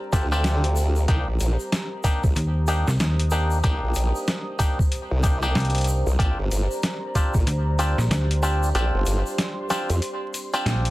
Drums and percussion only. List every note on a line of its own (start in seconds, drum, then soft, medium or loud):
0.13 kick loud
0.13 closed hi-hat medium
0.13 shaker medium
0.32 shaker medium
0.44 snare loud
0.44 closed hi-hat medium
0.44 shaker soft
0.64 closed hi-hat medium
0.76 shaker medium
0.96 shaker soft
1.08 kick loud
1.08 closed hi-hat medium
1.08 shaker soft
1.40 closed hi-hat medium
1.40 shaker medium
1.59 shaker soft
1.72 snare loud
1.72 closed hi-hat medium
1.72 shaker soft
2.04 kick medium
2.04 closed hi-hat medium
2.04 shaker medium
2.24 kick loud
2.24 shaker medium
2.36 closed hi-hat medium
2.36 shaker soft
2.68 closed hi-hat medium
2.68 shaker medium
2.87 snare soft
2.87 shaker medium
3.00 snare loud
3.00 closed hi-hat medium
3.00 shaker soft
3.19 closed hi-hat medium
3.31 shaker medium
3.51 shaker soft
3.63 kick loud
3.63 closed hi-hat medium
3.63 shaker soft
3.95 closed hi-hat medium
3.95 shaker medium
4.16 shaker soft
4.27 snare loud
4.27 closed hi-hat medium
4.27 shaker soft
4.60 kick medium
4.60 closed hi-hat medium
4.60 shaker medium
4.79 kick loud
4.79 shaker medium
4.92 closed hi-hat medium
4.92 shaker soft
5.24 kick loud
5.24 closed hi-hat medium
5.24 shaker medium
5.43 shaker soft
5.55 snare loud
5.55 closed hi-hat soft
5.55 shaker soft
5.60 closed hi-hat soft
5.65 closed hi-hat soft
5.70 closed hi-hat soft
5.75 closed hi-hat medium
5.78 closed hi-hat medium
5.81 closed hi-hat medium
5.84 closed hi-hat medium
5.84 shaker medium
6.07 shaker medium
6.19 kick loud
6.19 closed hi-hat medium
6.19 shaker soft
6.51 closed hi-hat medium
6.51 shaker medium
6.71 shaker soft
6.83 snare loud
6.83 closed hi-hat medium
6.83 shaker soft
7.15 kick medium
7.15 closed hi-hat medium
7.15 shaker medium
7.34 kick loud
7.34 shaker medium
7.47 closed hi-hat medium
7.47 shaker soft
7.79 closed hi-hat medium
7.79 shaker medium
7.99 snare soft
7.99 shaker medium
8.11 snare loud
8.11 closed hi-hat medium
8.11 shaker soft
8.31 closed hi-hat medium
8.43 shaker medium
8.63 shaker soft
8.75 closed hi-hat medium
8.75 shaker soft
9.06 closed hi-hat medium
9.06 shaker medium
9.26 shaker soft
9.38 snare loud
9.38 closed hi-hat medium
9.38 shaker soft
9.70 snare soft
9.70 closed hi-hat medium
9.70 shaker medium
9.90 closed hi-hat soft
9.90 shaker soft
10.02 closed hi-hat medium
10.02 shaker soft
10.34 closed hi-hat medium
10.34 shaker medium
10.54 closed hi-hat soft
10.54 shaker medium
10.66 snare loud
10.66 closed hi-hat medium
10.66 shaker soft
10.85 closed hi-hat medium